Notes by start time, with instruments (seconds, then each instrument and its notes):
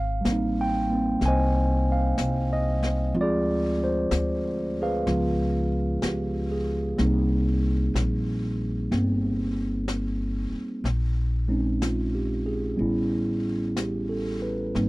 Already playing: upright bass G#1, tine electric piano F5
0.21 upright bass A1, tine electric piano G3 A#3
0.25 tine electric piano C4, brush sweep, snare, hi-hat pedal
0.32 tine electric piano D#4
0.61 tine electric piano G5
0.89 tine electric piano A#3 C4
1.21 upright bass C2, brush sweep, snare
1.26 tine electric piano C5 D#5 G#5
1.92 tine electric piano F5
2.18 upright bass C2, brush sweep, snare, hi-hat pedal
2.53 tine electric piano D#5
2.83 snare
3.14 upright bass D2, tine electric piano F3 G#3 C4 F4, brush sweep
3.21 tine electric piano F4 G#4 D5
3.84 tine electric piano C5
4.11 upright bass D2, brush sweep, snare, hi-hat pedal
4.82 tine electric piano G#4 B4 F5
5.07 upright bass C#2, tine electric piano F3 G#3 B3 F4, brush sweep, snare
6.02 upright bass C#2, tine electric piano G4, brush sweep, snare, hi-hat pedal
6.51 tine electric piano G#4
6.97 upright bass C2, tine electric piano G3 A#3 C4, brush sweep, snare
7.01 tine electric piano D#4
7.94 upright bass A#1, brush sweep, snare, hi-hat pedal
8.91 upright bass G1, tine electric piano A#3 C4, brush sweep, snare
9.88 brush sweep, snare, hi-hat pedal
10.51 muted upright bass stroke
10.84 upright bass A#1, brush sweep, snare
11.48 tine electric piano G#3 C4 C#4 D#4
11.82 tine electric piano F4, brush sweep, snare, hi-hat pedal
12.15 tine electric piano G4
12.46 tine electric piano G#4
12.76 upright bass A1, tine electric piano G3 B3 C#4, brush sweep
12.81 tine electric piano E4
13.76 tine electric piano G4, brush sweep, snare, hi-hat pedal
14.09 tine electric piano A4
14.42 tine electric piano B4
14.75 upright bass G#1, tine electric piano G3 A#3 C4 D#4, brush sweep, snare